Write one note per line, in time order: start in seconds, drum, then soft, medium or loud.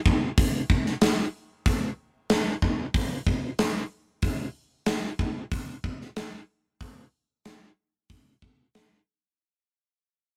0.06 kick medium
0.38 kick loud
0.38 open hi-hat medium
0.70 kick medium
0.86 snare soft
1.01 snare loud
1.01 open hi-hat medium
1.66 kick loud
1.66 open hi-hat soft
2.30 snare loud
2.30 open hi-hat soft
2.62 kick medium
2.94 kick loud
2.94 open hi-hat medium
3.27 kick medium
3.59 snare loud
3.59 open hi-hat medium
4.22 kick loud
4.22 open hi-hat soft
4.86 snare loud
4.86 open hi-hat medium
5.19 kick medium
5.52 kick loud
5.52 open hi-hat soft
5.84 kick medium
6.01 snare soft
6.16 snare loud
6.16 open hi-hat medium
6.81 kick loud
6.81 open hi-hat soft
7.45 snare loud
7.45 open hi-hat soft
8.10 kick loud
8.10 open hi-hat soft
8.42 kick medium
8.75 snare loud
8.75 open hi-hat soft